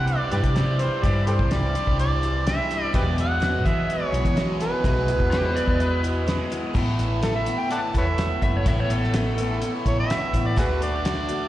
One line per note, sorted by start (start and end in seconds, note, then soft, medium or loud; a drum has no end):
0.00 0.20 C3 medium
0.00 0.54 C3 medium
0.00 0.36 E3 medium
0.00 0.55 E3 medium
0.00 0.32 G3 medium
0.00 0.55 G3 medium
0.00 0.54 C4 medium
0.00 0.32 D4 medium
0.00 0.30 E4 medium
0.00 0.54 G4 medium
0.00 0.10 F#5 medium
0.08 0.32 D5 medium
0.08 closed hi-hat soft
0.30 0.41 G2 medium
0.30 0.55 G3 soft
0.30 0.56 D4 soft
0.30 0.55 E4 soft
0.30 0.39 G4 medium
0.30 0.40 B4 medium
0.30 0.82 D5 medium
0.30 closed hi-hat medium
0.43 0.88 C3 medium
0.43 kick medium
0.43 closed hi-hat medium
0.55 1.01 C3 medium
0.55 0.79 E3 medium
0.55 1.03 E3 medium
0.55 1.02 G3 medium
0.55 0.80 G3 medium
0.55 1.02 C4 medium
0.55 0.80 D4 medium
0.55 0.79 E4 medium
0.55 1.02 G4 medium
0.55 snare medium
0.55 closed hi-hat medium
0.79 1.04 D4 soft
0.79 1.04 E4 medium
0.79 1.05 C5 medium
0.79 closed hi-hat medium
0.84 1.04 G3 soft
1.03 1.40 G2 medium
1.03 1.73 C3 medium
1.03 1.28 C3 medium
1.03 1.76 E3 medium
1.03 1.28 E3 medium
1.03 1.74 G3 medium
1.03 1.28 G3 medium
1.03 1.74 C4 medium
1.03 1.27 D4 medium
1.03 1.25 E4 medium
1.03 1.74 G4 medium
1.03 1.27 D5 medium
1.03 kick loud
1.03 closed hi-hat medium
1.27 1.51 G3 soft
1.27 1.51 D4 soft
1.27 1.51 E4 medium
1.27 1.34 G4 medium
1.27 1.33 A4 medium
1.27 1.54 C5 medium
1.27 closed hi-hat medium
1.39 1.75 C2 medium
1.39 kick medium
1.51 2.26 E3 medium
1.51 2.23 G3 medium
1.51 2.22 D4 medium
1.51 2.22 E4 medium
1.51 1.99 D5 medium
1.51 snare loud
1.51 closed hi-hat medium
1.75 2.45 C3 medium
1.75 2.46 E3 medium
1.75 2.46 G3 medium
1.75 2.45 C4 medium
1.75 2.45 G4 medium
1.75 closed hi-hat medium
1.87 2.58 C2 medium
1.87 kick medium
1.99 2.44 D5 medium
1.99 closed hi-hat medium
2.22 2.46 G3 soft
2.22 2.47 D4 soft
2.22 2.46 E4 soft
2.22 closed hi-hat medium
2.46 2.92 C3 medium
2.46 2.70 E3 medium
2.46 2.94 E3 medium
2.46 2.71 G3 medium
2.46 2.93 G3 medium
2.46 2.93 C4 medium
2.46 2.70 D4 medium
2.46 2.68 E4 medium
2.46 2.93 G4 medium
2.46 2.91 E5 medium
2.46 snare loud
2.46 closed hi-hat medium
2.69 2.94 G3 soft
2.69 2.94 D4 soft
2.69 2.93 E4 soft
2.69 snare soft
2.69 closed hi-hat medium
2.93 3.17 E2 medium
2.93 3.66 E2 medium
2.93 3.65 E2 medium
2.93 3.17 B2 medium
2.93 3.64 B2 medium
2.93 3.65 E3 medium
2.93 3.18 F#3 medium
2.93 3.17 G#3 medium
2.93 3.65 G#3 medium
2.93 3.17 B3 medium
2.93 3.64 B3 medium
2.93 3.15 E4 medium
2.93 3.04 G4 medium
2.93 3.64 G#4 medium
2.93 3.02 B4 medium
2.93 3.17 D5 medium
2.93 kick loud
2.93 closed hi-hat medium
3.16 3.39 F#3 soft
3.16 3.40 G#3 soft
3.16 3.41 B3 soft
3.16 3.41 E4 medium
3.16 closed hi-hat medium
3.21 3.68 F#5 medium
3.40 4.12 F#3 medium
3.40 4.13 G#3 medium
3.40 4.13 B3 medium
3.40 4.12 E4 medium
3.40 snare loud
3.40 closed hi-hat medium
3.64 4.34 E2 medium
3.64 4.34 B2 medium
3.64 4.01 E3 medium
3.64 4.36 E3 medium
3.64 4.35 G#3 medium
3.64 4.37 B3 medium
3.64 4.35 G#4 medium
3.64 3.92 E5 medium
3.64 kick medium
3.64 closed hi-hat medium
3.90 4.45 C#5 medium
3.90 closed hi-hat medium
4.12 4.22 B1 medium
4.12 4.35 F#3 soft
4.12 4.36 G#3 soft
4.12 4.37 B3 soft
4.12 4.37 E4 soft
4.12 closed hi-hat medium
4.25 4.69 E3 medium
4.25 kick medium
4.25 closed hi-hat medium
4.36 4.82 E2 medium
4.36 4.82 B2 medium
4.36 4.84 E3 medium
4.36 4.60 F#3 medium
4.36 4.83 G#3 medium
4.36 4.61 G#3 medium
4.36 4.85 B3 medium
4.36 4.60 B3 medium
4.36 4.58 E4 medium
4.36 4.83 G#4 medium
4.36 snare loud
4.36 closed hi-hat medium
4.60 4.84 F#3 soft
4.60 4.84 G#3 soft
4.60 4.85 B3 soft
4.60 4.84 E4 medium
4.60 6.48 B4 medium
4.60 snare soft
4.60 closed hi-hat medium
4.84 5.20 B1 medium
4.84 5.54 E2 medium
4.84 5.08 E2 medium
4.84 5.54 B2 medium
4.84 5.08 B2 medium
4.84 5.55 E3 medium
4.84 5.08 F#3 medium
4.84 5.09 G#3 medium
4.84 5.55 G#3 medium
4.84 5.55 B3 medium
4.84 5.08 B3 medium
4.84 5.07 E4 medium
4.84 5.54 G#4 medium
4.84 kick loud
4.84 closed hi-hat medium
5.08 5.30 F#3 soft
5.08 5.31 G#3 soft
5.08 5.32 B3 medium
5.08 5.32 E4 medium
5.08 closed hi-hat medium
5.20 5.56 E2 medium
5.20 kick medium
5.31 6.03 F#3 medium
5.31 6.03 G#3 medium
5.31 6.02 B3 medium
5.31 6.01 E4 medium
5.31 5.43 G4 medium
5.31 snare loud
5.31 closed hi-hat medium
5.45 5.56 C5 medium
5.55 6.25 E2 medium
5.55 6.26 B2 medium
5.55 6.27 E3 medium
5.55 6.26 G#3 medium
5.55 6.26 B3 medium
5.55 6.26 G#4 medium
5.55 5.79 D5 medium
5.55 closed hi-hat medium
5.67 6.39 E2 medium
5.67 kick medium
5.80 6.03 B4 medium
5.80 closed hi-hat medium
6.03 6.25 F#3 soft
6.03 6.26 G#3 soft
6.03 6.27 B3 soft
6.03 6.27 E4 medium
6.03 closed hi-hat medium
6.27 6.73 E2 medium
6.27 6.74 B2 medium
6.27 6.74 E3 medium
6.27 6.51 F#3 medium
6.27 6.51 G#3 medium
6.27 6.74 G#3 medium
6.27 6.74 B3 medium
6.27 6.50 B3 medium
6.27 6.49 E4 medium
6.27 6.75 G#4 medium
6.27 snare loud
6.27 closed hi-hat medium
6.50 6.74 F#3 soft
6.50 6.75 G#3 soft
6.50 6.75 B3 medium
6.50 6.75 E4 medium
6.50 closed hi-hat medium
6.74 7.46 A1 medium
6.74 7.22 A2 medium
6.74 8.64 A2 medium
6.74 7.20 E3 medium
6.74 8.65 E3 medium
6.74 8.68 A3 medium
6.74 7.22 A3 medium
6.74 7.22 B3 medium
6.74 8.65 B3 medium
6.74 7.23 E4 medium
6.74 8.65 E4 medium
6.74 kick loud
6.74 crash loud
6.99 closed hi-hat medium
7.21 7.46 E3 medium
7.21 7.46 A3 medium
7.21 7.46 B3 medium
7.21 7.44 E4 medium
7.21 7.34 A4 medium
7.21 snare medium
7.21 closed hi-hat medium
7.36 7.61 E5 medium
7.46 7.68 A3 soft
7.46 7.69 B3 soft
7.46 7.70 E4 medium
7.46 closed hi-hat medium
7.59 7.70 G5 medium
7.68 7.93 E3 medium
7.68 7.94 A3 medium
7.68 7.94 B3 medium
7.68 7.92 E4 medium
7.68 7.80 D5 medium
7.68 7.79 F#5 medium
7.68 7.94 A5 medium
7.68 closed hi-hat medium
7.93 8.30 E2 medium
7.93 8.45 A3 soft
7.93 8.42 B3 soft
7.93 8.40 E4 soft
7.93 kick medium
7.93 closed hi-hat medium
7.98 8.04 B4 medium
7.98 8.06 C#5 medium
7.98 8.43 E5 medium
8.18 snare medium
8.18 closed hi-hat medium
8.41 8.60 F#1 medium
8.41 8.65 A3 soft
8.41 8.66 B3 soft
8.41 8.66 E4 soft
8.41 8.54 E5 medium
8.41 kick medium
8.41 closed hi-hat medium
8.56 8.67 C#5 medium
8.66 8.84 A1 medium
8.66 9.14 A2 medium
8.66 10.56 A2 medium
8.66 9.14 E3 medium
8.66 10.56 E3 medium
8.66 9.15 A3 medium
8.66 10.58 A3 medium
8.66 9.14 B3 medium
8.66 10.57 B3 medium
8.66 9.15 E4 medium
8.66 10.57 E4 medium
8.66 8.79 E5 medium
8.66 kick loud
8.66 closed hi-hat medium
8.80 8.91 C#5 medium
8.90 9.62 A1 medium
8.90 9.71 A4 medium
8.90 closed hi-hat medium
9.03 snare soft
9.14 9.38 E3 medium
9.14 9.39 A3 medium
9.14 9.39 B3 medium
9.14 9.36 E4 medium
9.14 snare loud
9.14 closed hi-hat medium
9.37 9.62 A3 soft
9.37 9.63 B3 medium
9.37 9.61 E4 medium
9.37 closed hi-hat medium
9.62 9.86 E3 medium
9.62 9.86 A3 medium
9.62 9.86 B3 medium
9.62 9.84 E4 medium
9.62 closed hi-hat medium
9.85 10.04 A1 medium
9.85 10.36 A3 soft
9.85 10.34 B3 soft
9.85 10.33 E4 medium
9.85 9.98 C#5 medium
9.85 kick medium
9.85 closed hi-hat medium
10.00 10.48 E5 medium
10.10 snare loud
10.10 closed hi-hat medium
10.33 10.57 A1 medium
10.33 10.56 A3 soft
10.33 10.58 B3 soft
10.33 10.57 E4 soft
10.33 kick medium
10.33 closed hi-hat medium
10.47 10.57 D5 medium
10.56 11.29 D2 medium
10.56 11.04 D3 medium
10.56 11.48 D3 medium
10.56 11.05 A3 medium
10.56 11.48 A3 medium
10.56 11.05 D4 medium
10.56 11.48 D4 medium
10.56 11.05 F#4 medium
10.56 10.67 F#4 medium
10.56 11.48 F#4 medium
10.56 10.66 G#4 medium
10.56 10.81 B4 medium
10.56 kick loud
10.56 closed hi-hat medium
10.82 11.48 D5 loud
10.82 closed hi-hat medium
11.05 11.29 D3 medium
11.05 11.29 A3 medium
11.05 11.29 D4 medium
11.05 11.27 F#4 medium
11.05 snare loud
11.05 closed hi-hat medium
11.28 11.48 A3 soft
11.28 11.48 D4 soft
11.28 11.48 F#4 medium
11.28 closed hi-hat medium